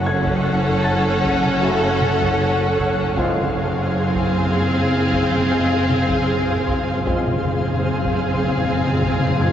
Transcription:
Already playing: double bass section F#1, cello section F#2, viola section C#4, violin section A4 F#5, synth texture A4 C#5 F#5
0.06 grand piano G#6
0.26 taiko
0.84 grand piano A5 A6
1.23 taiko
1.42 taiko mid
1.60 trombone section C#3 A3, french horn section C#4 F#4
2.01 taiko mid
2.20 taiko
2.78 taiko
3.16 double bass section F#1, cello section F#2, timpani F#2, trombone section F3 G#3, french horn section C4 F4, viola section C4, violin section G#4 F5, synth texture G#4 C5 F5, taiko
3.25 timpani F#2
3.33 timpani F#2
3.37 timpani F#2, taiko mid
3.48 timpani F#2
3.56 timpani F#2
3.64 timpani F#2
3.71 timpani F#2
3.78 timpani F#2
3.86 timpani F#2
4.01 timpani F#2
4.08 timpani F#2
4.15 timpani F#2, taiko
4.24 timpani F#2
4.31 timpani F#2
4.38 timpani F#2
4.45 timpani F#2
4.53 timpani F#2
4.61 timpani F#2
4.69 timpani F#2
4.76 timpani F#2
4.84 timpani F#2
4.91 timpani F#2
4.98 timpani F#2
5.06 timpani F#2
5.12 timpani F#2, taiko
5.20 timpani F#2
5.27 timpani F#2
5.31 timpani F#2, taiko mid
5.50 timpani F#2, trombone section F3 G#3, french horn section C4 F4
5.57 timpani F#2
5.65 timpani F#2
5.72 timpani F#2
5.80 timpani F#2
5.88 timpani F#2, taiko mid
5.95 timpani F#2
6.03 timpani F#2
6.09 timpani F#2, taiko
6.19 timpani F#2
6.26 timpani F#2
6.33 timpani F#2
6.40 timpani F#2
6.48 timpani F#2
6.55 timpani F#2
6.63 timpani F#2
6.68 timpani F#2, taiko
6.79 timpani F#2
6.86 timpani F#2
6.94 timpani F#2
7.01 timpani F#2
7.06 double bass section F#1, cello section F#2, timpani F#2, trombone section F3 G#3, french horn section C4 F4, viola section C4, synth texture G#4 C5 F5, violin section G#4 F5, taiko
7.16 timpani F#2
7.24 timpani F#2, taiko mid
7.30 timpani F#2
7.38 timpani F#2
7.45 timpani F#2
7.53 timpani F#2
7.60 timpani F#2
7.66 timpani F#2
7.74 timpani F#2
7.83 timpani F#2
7.90 timpani F#2
7.97 timpani F#2
8.04 timpani F#2, taiko
8.12 timpani F#2
8.20 timpani F#2
8.27 timpani F#2
8.35 timpani F#2
8.42 timpani F#2
8.49 timpani F#2
8.57 timpani F#2
8.64 timpani F#2
8.71 timpani F#2
8.80 timpani F#2
8.86 timpani F#2
8.94 timpani F#2
9.02 timpani F#2, taiko
9.09 timpani F#2
9.17 timpani F#2, taiko mid
9.25 timpani F#2
9.32 timpani F#2
9.40 timpani F#2, trombone section F3 G#3, french horn section C4 F4, grand piano G#6
9.47 timpani F#2

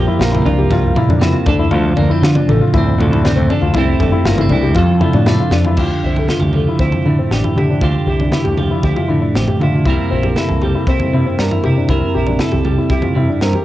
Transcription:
Already playing: clean electric guitar F3 A#3 G4
0.08 felt piano E4
0.19 fingered electric bass A#1, clean electric guitar A#3, felt piano F4, snare
0.32 felt piano E4, floor tom, mid tom
0.45 fingered electric bass C2, felt piano D4, clean electric guitar F4, floor tom, mid tom
0.58 felt piano G4
0.70 fingered electric bass C2, clean electric guitar G2, felt piano F4, kick, floor tom
0.96 clean electric guitar A#2, felt piano E4, floor tom, mid tom
1.08 fingered electric bass F2, felt piano D4, floor tom
1.21 clean electric guitar C3, felt piano E4, snare, floor tom, mid tom
1.33 felt piano F4
1.46 fingered electric bass D2, clean electric guitar D3 A4, felt piano D4, kick, floor tom
1.59 felt piano E4
1.71 fingered electric bass D2, clean electric guitar F3, felt piano F4, floor tom
1.96 fingered electric bass D2, clean electric guitar A#3, felt piano D4, floor tom
2.10 clean electric guitar C4, felt piano E4
2.22 fingered electric bass D3, felt piano F4, clean electric guitar F4, snare
2.35 felt piano D4, floor tom, mid tom
2.48 fingered electric bass A1, clean electric guitar A2, felt piano A4, floor tom, mid tom
2.61 felt piano F4
2.74 fingered electric bass D2, clean electric guitar C4, felt piano E4, kick, floor tom
2.98 fingered electric bass D2, felt piano F4, floor tom, mid tom
3.02 clean electric guitar A4
3.12 felt piano E4, floor tom
3.24 clean electric guitar C4, felt piano D4, snare, floor tom, mid tom
3.36 fingered electric bass D2, felt piano C4
3.50 clean electric guitar D3 A4, felt piano D4, floor tom
3.61 fingered electric bass D2, felt piano F4
3.74 fingered electric bass C2, clean electric guitar C3 A3, felt piano E4, kick, floor tom
3.78 clean electric guitar C4 E4 G4
4.00 fingered electric bass G1, clean electric guitar A3, felt piano A4, kick, floor tom
4.12 felt piano E4
4.25 fingered electric bass G1, clean electric guitar A#3, felt piano F4, snare
4.38 clean electric guitar C4, felt piano E4, floor tom, mid tom
4.49 fingered electric bass C2, felt piano D4, clean electric guitar E4, floor tom, mid tom
4.63 felt piano G4
4.75 fingered electric bass F2, clean electric guitar F2 A4, felt piano F4, kick, floor tom
5.01 clean electric guitar F3, felt piano E4, floor tom, mid tom
5.13 fingered electric bass A2, felt piano D4, floor tom
5.26 clean electric guitar D4, felt piano E4, snare, floor tom, mid tom
5.40 felt piano F4
5.51 fingered electric bass F2, felt piano D4, clean electric guitar F4, snare
5.65 felt piano E4, floor tom
5.77 fingered electric bass D2, clean electric guitar D3 G4, felt piano F4, kick, floor tom, crash
6.03 fingered electric bass C2, felt piano C4, clean electric guitar E4
6.16 felt piano A4, floor tom
6.28 clean electric guitar F4, felt piano F4, snare, mid tom
6.40 fingered electric bass D2, clean electric guitar G4, floor tom
6.53 clean electric guitar F3, felt piano A4, mid tom
6.69 felt piano E4
6.79 fingered electric bass D2, felt piano C4, clean electric guitar E4, kick
6.92 floor tom, mid tom
7.05 clean electric guitar A2, fingered electric bass D3, felt piano E4
7.19 felt piano C4
7.31 fingered electric bass A1, felt piano D4, clean electric guitar G4, snare
7.44 felt piano E4, floor tom
7.56 fingered electric bass D3, clean electric guitar E4, felt piano G4, mid tom
7.70 felt piano D4
7.81 fingered electric bass D2, clean electric guitar D3 G4, felt piano F4, kick, floor tom
8.06 fingered electric bass C2, clean electric guitar E4, felt piano G4
8.20 felt piano D4, floor tom
8.32 felt piano E4, clean electric guitar G4, snare, mid tom
8.44 fingered electric bass D2, felt piano G4, floor tom
8.58 clean electric guitar F3, felt piano G4, mid tom
8.71 felt piano E4
8.83 fingered electric bass D2, clean electric guitar E4, felt piano G4, kick
8.96 felt piano F4, floor tom, mid tom
9.08 clean electric guitar A2, fingered electric bass D3, felt piano E4
9.22 felt piano D4
9.35 fingered electric bass A1, felt piano C4, clean electric guitar G4, snare
9.48 felt piano G4, floor tom
9.60 fingered electric bass D3, clean electric guitar E4, felt piano F4, mid tom
9.75 felt piano F4
9.85 fingered electric bass C2, clean electric guitar C3 G3 A#3, felt piano E4, kick, floor tom
9.90 clean electric guitar E4 A#4
10.11 fingered electric bass A#1, felt piano C4, clean electric guitar E4
10.23 felt piano G4, floor tom
10.36 felt piano E4, clean electric guitar A4, snare, mid tom
10.49 fingered electric bass C2, floor tom
10.62 clean electric guitar G3, felt piano G4, mid tom
10.75 felt piano E4
10.87 fingered electric bass C2, felt piano C4, clean electric guitar E4, kick
11.00 floor tom, mid tom
11.13 clean electric guitar G2, fingered electric bass C3, felt piano E4
11.26 felt piano C4
11.39 fingered electric bass G2, felt piano D4, clean electric guitar A#4, snare
11.51 felt piano E4, floor tom
11.64 fingered electric bass C3, clean electric guitar E4, felt piano G4, mid tom
11.77 felt piano D4
11.89 fingered electric bass C2, clean electric guitar C3 A#4, felt piano E4, kick, floor tom
12.14 fingered electric bass A#1, clean electric guitar E4, felt piano G4
12.27 felt piano D4, floor tom
12.39 felt piano E4, clean electric guitar A4, snare, mid tom
12.52 fingered electric bass C2, felt piano G4, floor tom
12.65 clean electric guitar G3, felt piano G4, mid tom
12.78 felt piano E4
12.90 fingered electric bass C2, clean electric guitar E4, felt piano G4, kick
13.02 felt piano F4, floor tom, mid tom
13.15 clean electric guitar G2, fingered electric bass C3, felt piano E4
13.29 felt piano D4
13.41 fingered electric bass G2, felt piano C4, clean electric guitar A#4, snare
13.53 felt piano G4, floor tom

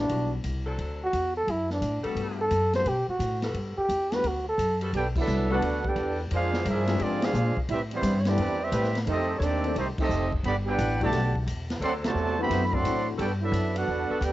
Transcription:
0.00 trombone D4
0.09 upright bass B1, grand piano E3 G3 B3 D4 F#4, ride
0.44 upright bass C2, hi-hat pedal, ride
0.66 saxophone section F#3 C4 D4 A4
0.78 upright bass D2, ride
1.04 trombone F#4
1.13 upright bass E2, hi-hat pedal, ride
1.37 trombone A4
1.47 upright bass F#2, trombone E4, ride
1.70 trombone D4, snare
1.81 upright bass A2, hi-hat pedal, ride
2.02 saxophone section G3 B3 F#4 A4, grand piano G3 A3, muted upright bass stroke, ride
2.07 grand piano B3 D4 F#4
2.15 upright bass G2, ride
2.41 trombone A4
2.51 upright bass F#2, hi-hat pedal, ride
2.73 grand piano G3 A3 B3 D4 F#4, trombone C5, snare, ride
2.85 upright bass B2, trombone G4, ride
3.08 trombone F#4, muted upright bass stroke
3.19 upright bass A2, hi-hat pedal, ride
3.42 saxophone section G3 B3 F#4 A4, snare, ride
3.54 upright bass G2, ride
3.77 trombone G4, muted upright bass stroke
3.89 upright bass E2, hi-hat pedal, ride
4.12 grand piano G3 A3 B3 D4 F#4, trombone B4, snare, ride
4.24 upright bass D2, ride
4.28 trombone F#4
4.49 trombone A4
4.58 upright bass F#2, hi-hat pedal, ride
4.81 saxophone section G3 B3 F#4 A4, ride
4.93 upright bass B1, trombone section B3 D4 G4, trumpet section D4 B4, ride
4.97 trumpet section A4 G5
5.16 trombone section F#3 B3 E4, trumpet section D4 A4 B4 E5, kick, crash
5.28 upright bass C2, hi-hat pedal
5.50 saxophone section G3 B3 F#4 A4, grand piano G3 A3 B3 D4 F#4, trombone section B3 D4 F#4, trumpet section D4 A4 B4 F#5
5.62 upright bass D2, ride
5.85 trombone section B3 D4 G4, trumpet section D4 A4 B4 G5, kick
5.96 upright bass E2, hi-hat pedal, ride
6.31 upright bass F2, trombone section G#3 D4 F4, saxophone section A#3 D4 A#4 C5, trumpet section D4 G#4 C5 F5, ride
6.53 snare
6.65 upright bass G2, trombone section F3 E4 G#4, trumpet section E5, hi-hat pedal, ride
6.70 trumpet section D4 G#4 C5
6.87 grand piano F3 G#3 C4 D4 G4, snare, ride
6.99 upright bass G#2, trombone section F3 G#3 D4, trumpet section C4 F4 G#4 D5, ride
7.22 trombone section G#3 D4 F4, trumpet section D4 G#4 C5 F5, snare, ride
7.33 upright bass A#2, hi-hat pedal
7.56 muted upright bass stroke, kick
7.68 upright bass A2, trombone section G3 C4 E4, trumpet section C4 G4 B4 E5, ride
7.91 trombone section E3 G3 C4, trumpet section G3 B3 E4 C5, ride
8.03 upright bass G2, hi-hat pedal, ride
8.19 trumpet section C#5
8.25 grand piano E3 A3 B3 C4 G4, trombone section E3 G3 D4, trumpet section C4 G4 B4 D5, snare, ride
8.37 upright bass E2, saxophone section A3 C4 G4 B4, ride
8.61 trombone section G3 C4 E4, trumpet section C4 G4 B4 E5
8.72 upright bass A2, saxophone section A3 C4 G4 B4, hi-hat pedal, ride
8.84 snare
8.95 snare, ride
9.07 upright bass F2, saxophone section D#3 G3 D4 A4, trombone section A3 C4 D#4, trumpet section C4 G4 A4 D#5, ride
9.38 upright bass D#2, trombone section D#3, trumpet section C#5, hi-hat pedal, ride
9.42 trombone section A3 D4, trumpet section C4 G4 A4 D5
9.64 grand piano D#3 A3 C4 D4 G4, ride
9.75 upright bass C2, trombone section D#3 A3 C4, trumpet section A3 D#4 G4 C5, ride
9.98 trombone section A3 C4 D#4, trumpet section C4 G4 A4 D#5, muted upright bass stroke, kick, crash
10.09 upright bass F1, hi-hat pedal
10.33 kick
10.43 upright bass G1, trombone section D3 G3 B3, trumpet section G4 D5 F#5 B5, ride
10.66 saxophone section F#3 D4 E4 G4, trombone section B3 D4 G4, trumpet section D4 B4 F#5 G5
10.78 upright bass A1, hi-hat pedal, ride
11.01 trombone section B2 D3 A3, grand piano E3 G3 B3 D4 F#4, saxophone section F#3 D4 E4 G4, trumpet section G4 D5 F#5 A5, kick, ride
11.12 upright bass B1, snare, ride
11.36 kick
11.47 upright bass E2, hi-hat pedal, ride
11.70 snare, ride
11.80 upright bass D2, saxophone section F#3 C4 D4 A4, ride
11.84 trombone section F#3 A3 C4, trumpet section A4 D5 F#5 C6
12.04 trombone section C3 F#3 A3, trumpet section F#4 C5 D5 A5, snare, ride
12.15 upright bass E2, hi-hat pedal
12.38 grand piano E3 A3 C4 D4 F#4, trombone section B3, trumpet section G4 C5 E5 B5
12.50 upright bass F#2, snare, ride
12.65 trumpet section B5
12.73 trombone section F#3 A3 C4, trumpet section A4 D5 F#5 C6, kick
12.83 upright bass A2, grand piano E3 A3 C4 D4 F#4, hi-hat pedal, ride
13.17 upright bass G2, saxophone section G3 B3 F#4 A4, trombone section B3 D4 G4, trumpet section D4 A4, ride
13.21 trumpet section B4 G5
13.42 trombone section F#3 B3 E4, trumpet section D4 A4 B4 E5
13.52 upright bass F#2, hi-hat pedal, ride
13.76 trombone section B3 D4 F#4, trumpet section D4 A4 B4 F#5, ride
13.88 upright bass E2
14.09 saxophone section G3 B3 F#4 A4, muted upright bass stroke
14.21 upright bass D2, trombone section B3 D4 G4, trumpet section D4 A4 B4 G5, hi-hat pedal, ride

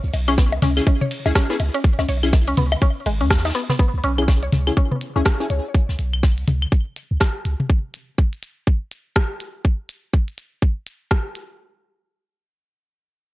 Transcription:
0.03 sub bass C#2, closed hi-hat
0.13 sub bass B1, closed hi-hat, ride, high bongo, shaker
0.28 synth arpeggio sound C#4, synth stab C#4 E4 G#4, closed hi-hat, claves, shaker
0.38 synth arpeggio sound B3, kick, snare, closed hi-hat, shaker
0.52 sub bass C#2, closed hi-hat, high bongo
0.62 sub bass C#2, synth arpeggio sound C#4, snare, closed hi-hat, mid tom, ride
0.77 synth stab C#4 E4 G#4, snare, claves, shaker
0.87 synth arpeggio sound C#4, kick, closed hi-hat, high bongo, shaker
1.01 synth arpeggio sound C#5, mid tom
1.11 closed hi-hat, ride, shaker
1.26 sub bass C#2, synth stab C#4 E4 G#4, high bongo, shaker
1.35 synth arpeggio sound C#4, kick, cross-stick, snare, closed hi-hat, shaker
1.50 synth arpeggio sound B3, synth stab C#4 E4 G#4, snare
1.60 sub bass C#2, closed hi-hat, ride, high bongo
1.74 synth arpeggio sound C#4, closed hi-hat, shaker
1.84 kick, closed hi-hat, shaker
1.98 sub bass C#2, synth arpeggio sound C#4, snare, high bongo
2.08 sub bass B1, synth arpeggio sound C#5, closed hi-hat, ride, shaker
2.23 synth stab C#4 E4 G#4, claves, shaker
2.33 kick, snare, open hi-hat, high bongo, shaker
2.47 sub bass C#2, synth arpeggio sound C#4, closed hi-hat
2.57 sub bass C#2, synth arpeggio sound B3, closed hi-hat, mid tom, ride, shaker
2.72 high bongo, claves, shaker
2.82 synth arpeggio sound C#4, kick, closed hi-hat, shaker
3.06 sub bass G#1, synth arpeggio sound G#3, closed hi-hat, ride, high bongo, shaker
3.21 sub bass E2, synth arpeggio sound C#4, ride, shaker
3.30 kick, cross-stick, snare, closed hi-hat, shaker
3.38 snare, closed hi-hat
3.45 sub bass D#2, synth arpeggio sound D#4, snare, closed hi-hat, high bongo
3.49 snare, closed hi-hat
3.55 synth arpeggio sound B3, snare, closed hi-hat, ride, shaker
3.69 synth arpeggio sound B3, snare, closed hi-hat, mid tom, shaker
3.79 synth arpeggio sound B3, kick, closed hi-hat
3.94 sub bass C#2, closed hi-hat
4.04 sub bass B1, synth arpeggio sound C#4, closed hi-hat
4.18 synth stab C#4 E4 G#4, closed hi-hat, claves
4.28 synth arpeggio sound C#4, kick, snare, closed hi-hat
4.43 sub bass C#2, synth arpeggio sound C#5, closed hi-hat
4.52 sub bass C#2, snare, closed hi-hat, mid tom
4.67 synth stab C#4 E4 G#4, snare, claves
4.77 synth arpeggio sound C#4, kick, closed hi-hat
4.91 synth arpeggio sound B3, mid tom
5.01 closed hi-hat
5.16 sub bass C#2, synth arpeggio sound C#4, synth stab C#4 E4 G#4
5.25 kick, cross-stick, snare, closed hi-hat
5.40 synth arpeggio sound C#4, synth stab C#4 E4 G#4, snare
5.50 sub bass C#2, synth arpeggio sound C#5, closed hi-hat
5.64 closed hi-hat
5.75 kick, closed hi-hat
5.89 sub bass C#2, snare
5.99 sub bass B1, closed hi-hat
6.13 claves
6.23 kick, snare, open hi-hat
6.38 sub bass C#2, closed hi-hat
6.48 sub bass C#2, closed hi-hat, mid tom
6.62 claves
6.72 kick, closed hi-hat
6.96 closed hi-hat
7.11 sub bass C#2
7.20 kick, cross-stick, snare, closed hi-hat
7.45 sub bass C#2, closed hi-hat
7.60 mid tom
7.70 kick
7.94 closed hi-hat
8.18 kick
8.33 closed hi-hat
8.43 closed hi-hat
8.67 kick
8.91 closed hi-hat
9.16 kick, cross-stick
9.40 closed hi-hat
9.65 kick
9.89 closed hi-hat
10.13 kick
10.28 closed hi-hat
10.38 closed hi-hat
10.62 kick
10.87 closed hi-hat
11.11 kick, cross-stick
11.35 closed hi-hat

